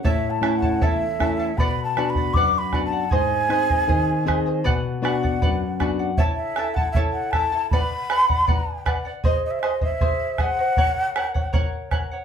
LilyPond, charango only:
\new Staff \with { instrumentName = "Charango" } { \time 2/4 \key b \dorian \tempo 4 = 78 <e' a' cis'' e'' a''>8 <e' a' e'' a''>16 <e' a' a''>16 <e' a' cis'' e'' a''>8 <e' a' e'' a''>16 <e' a' a''>16 | <b' d'' fis''>8 <b' d'' fis''>16 <d'' fis''>16 <b' d'' fis''>8 <b' d'' fis''>16 <d'' fis''>16 | <gis' bis' dis''>8 <gis' bis' dis''>16 <bis' dis''>16 <gis' bis' dis''>8 <gis' bis' dis''>16 <bis' dis''>16 | <b' d'' fis''>8 <b' d'' fis''>16 <d'' fis''>16 <b' d'' fis''>8 <b' d'' fis''>16 <d'' fis''>16 |
<e' a' cis'' e'' a''>8 <e' a' e'' a''>16 <e' a' a''>16 <e' a' cis'' e'' a''>8 <e' a' e'' a''>16 <e' a' a''>16 | <b' d'' fis''>8 <b' d'' fis''>16 <d'' fis''>16 <b' d'' fis''>8 <b' d'' fis''>16 <d'' fis''>16 | <gis' bis' dis''>8 <gis' bis' dis''>16 <bis' dis''>16 <gis' bis'>8 <gis' bis' dis''>16 <bis' dis''>16 | <ais' cis'' fis''>8 <ais' cis'' fis''>16 <cis'' fis''>16 <ais' cis'' fis''>8 <ais' cis'' fis''>16 <cis'' fis''>16 | }